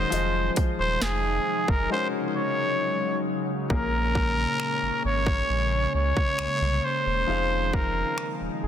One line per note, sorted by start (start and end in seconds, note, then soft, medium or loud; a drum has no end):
0.00 0.11 G#3 soft
0.00 3.66 G#3 medium
0.00 0.10 C#4 medium
0.00 0.12 D#4 soft
0.00 0.12 F#4 soft
0.00 0.12 A#4 soft
0.00 0.52 C5 medium
0.00 0.12 C#5 medium
0.10 0.50 F1 loud
0.10 1.89 C3 medium
0.10 1.86 F3 medium
0.10 1.89 F3 medium
0.10 3.66 D#4 medium
0.10 1.87 F4 medium
0.10 1.87 G#4 medium
0.10 1.88 C5 medium
0.10 1.88 D#5 medium
0.10 closed hi-hat medium
0.56 kick loud
0.56 closed hi-hat medium
0.79 0.98 D#1 medium
0.79 1.04 C5 medium
1.01 1.39 F1 loud
1.01 1.71 G#4 medium
1.01 snare loud
1.01 closed hi-hat medium
1.68 1.87 F#1 medium
1.68 1.91 A#4 medium
1.68 kick loud
1.89 3.68 C#3 medium
1.89 3.68 F#3 medium
1.89 3.66 G#3 medium
1.89 3.67 C#4 medium
1.89 3.66 D#4 medium
1.89 3.66 F#4 medium
1.89 3.67 A#4 medium
1.89 2.08 C5 loud
2.37 3.22 C#5 medium
3.69 4.46 A#1 loud
3.69 7.24 A#2 medium
3.69 7.25 C#3 medium
3.69 8.68 G#3 medium
3.69 7.24 A#3 medium
3.69 7.25 A#3 medium
3.69 7.25 C#4 medium
3.69 7.24 C#4 medium
3.69 7.25 G#4 medium
3.69 5.01 A#4 loud
3.69 7.25 A#4 medium
3.69 kick loud
4.15 kick medium
4.60 finger snap loud
4.82 4.91 G#1 soft
5.04 5.42 G#1 medium
5.04 5.91 C#5 loud
5.27 kick loud
5.49 5.87 A#1 loud
5.94 6.13 C#2 medium
5.94 6.86 C#5 loud
6.17 kick medium
6.39 6.48 C2 soft
6.39 finger snap loud
6.61 6.80 C2 medium
6.85 7.76 C5 loud
7.06 7.25 E1 medium
7.27 8.04 F1 loud
7.27 8.68 D#3 medium
7.27 8.68 F3 medium
7.27 8.68 C4 medium
7.27 8.68 D#4 medium
7.27 8.68 G#4 medium
7.27 8.68 F5 medium
7.73 8.36 A#4 medium
7.73 kick loud
8.18 finger snap loud
8.40 8.49 D#1 soft
8.63 8.68 D#1 medium
8.63 8.68 G#4 medium